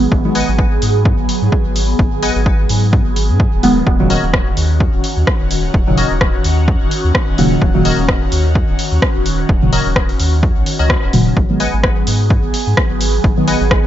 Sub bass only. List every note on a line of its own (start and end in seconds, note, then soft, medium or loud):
0.12 0.43 G#1 loud
0.48 0.78 G#1 medium
0.82 1.13 G#2 medium
1.19 1.26 G#1 medium
1.42 1.50 G#2 medium
1.65 1.95 G#1 medium
1.99 2.31 G#1 loud
2.36 2.65 G#1 medium
2.70 3.01 G#2 medium
3.06 3.31 G#1 loud
3.29 3.47 G#2 medium
3.53 3.83 D#1 medium
3.87 4.18 D#1 loud
4.23 4.53 D#1 medium
4.57 4.88 D#2 medium
4.93 5.01 D#1 medium
5.17 5.25 D#2 medium
5.40 5.70 D#1 medium
5.74 6.06 D#1 loud
6.11 6.40 D#1 medium
6.44 6.76 D#2 medium
6.81 6.89 D#1 medium
7.04 7.12 D#2 medium
7.28 7.58 D#1 medium
7.62 7.93 D#1 loud
7.98 8.28 D#1 medium
8.32 8.63 D#2 medium
8.68 8.76 D#1 medium
8.92 9.00 D#2 medium
9.15 9.45 D#1 medium
9.49 9.81 D#1 loud
9.86 10.15 D#1 medium
10.19 10.51 D#2 medium
10.56 10.64 A#1 medium
10.79 10.96 C#2 medium
11.03 11.33 D#1 medium
11.37 11.68 G#1 loud
11.73 12.03 G#1 medium
12.07 12.38 G#2 medium
12.44 12.51 G#1 medium
12.67 12.75 G#2 medium
12.90 13.20 G#1 medium
13.24 13.56 G#1 loud
13.61 13.87 G#1 medium